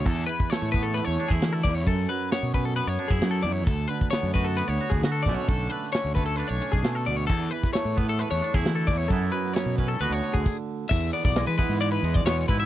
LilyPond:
<<
  \new Staff \with { instrumentName = "Clean electric guitar" } { \time 4/4 \key e \mixolydian \tempo 4 = 133 a'8 b'8 cis''8 b'16 a'16 b'16 cis''8 gis'8 a'16 d''16 cis''16 | a'8 b'8 cis''8 b'16 a'16 b'16 cis''8 gis'8 a'16 d''16 cis''16 | a'8 b'8 cis''8 b'16 a'16 b'16 cis''8 gis'8 a'16 d''16 cis''16 | a'8 b'8 cis''8 b'16 a'16 b'16 cis''8 gis'8 a'16 d''16 cis''16 |
a'8 b'8 cis''8 b'16 a'16 b'16 cis''8 gis'8 a'16 d''16 cis''16 | a'8 b'8 cis''8 b'16 a'16 b'16 cis''8 gis'8 r8. | e''8 d''16 d''8 b'16 b'8 d''16 b'8 d''16 cis''8 b'16 e''16 | }
  \new Staff \with { instrumentName = "Clean electric guitar" } { \time 4/4 \key e \mixolydian << { d'4 a8 b8 a8 d'16 e'4~ e'16 | r4 b8 cis'8 b8 d'16 e'4~ e'16 | r4 b8 fis'8 b8 fis'8 fis'8 <d a cis' d'>8~ | <d a cis' d'>8 a8 cis'8 a8 d'8 cis'8 a8 r8 |
r4 a8 b8 a8 d'16 e'4~ e'16 | <fis b cis' e'>4 b8 cis'8 <d b fis'>4 r4 | r8 b8 gis8 b4 gis8 b8 e'8 | } \\ { <e, d>8 e2~ e8 d,8 e,8 | fis,8 fis2~ fis8 fis,8 e,8 | d,8 d2. b,8 | d2.~ d8 b,8 |
e,8 e2~ e8 d,8 e,8 | fis,8 fis4. d,8 d4. | e,4. e4. b,4 | } >> }
  \new Staff \with { instrumentName = "Fingered electric bass" } { \clef bass \time 4/4 \key e \mixolydian e,8 r8. a,4 e,16 r16 e,16 e8 e,8 | fis,8 r8. b,4 fis,16 r16 fis,16 fis8 fis,8 | d,8 r8. fis,4 d,16 r16 d,16 d8 b,,16 r16 | b,,8 r8. d,4 b,,16 r16 b,,16 b,8 d,8 |
e,8 r8. a,4 e,16 r16 e,16 e8 e,8 | fis,8 r8. b,8. d,16 d,16 r16 d,16 r4 | e,8 r16 b,,8 e16 r16 gis,8. e,8 e,8 gis,8 | }
  \new DrumStaff \with { instrumentName = "Drums" } \drummode { \time 4/4 <bd cymr>8 cymr16 bd16 <cymr sn>8 <bd cymr>8 cymr8 cymr16 bd16 <cymr sn>8 <bd cymr>8 | <bd cymr>8 cymr8 <cymr sn>8 <bd cymr>8 cymr8 cymr16 bd16 <cymr sn>8 cymr8 | <bd cymr>8 cymr16 bd16 <cymr sn>8 <bd cymr>8 cymr8 cymr16 bd16 <cymr sn>8 <bd cymr>8 | <bd cymr>8 cymr16 sn16 <cymr sn>8 <bd cymr>8 cymr8 cymr16 bd16 <cymr sn>16 sn16 cymr8 |
<bd cymr>8 cymr16 <bd sn>16 <cymr sn>8 <bd cymr>8 cymr8 cymr16 bd16 <cymr sn>8 <bd cymr>8 | <bd cymr>8 cymr16 sn16 <cymr sn>8 <bd cymr>8 cymr8 cymr16 bd16 <cymc bd>4 | <cymc bd>8 cymr16 bd16 <cymr sn>8 <bd cymr sn>16 sn16 cymr8 cymr16 bd16 <cymr sn>8 <bd cymr>8 | }
>>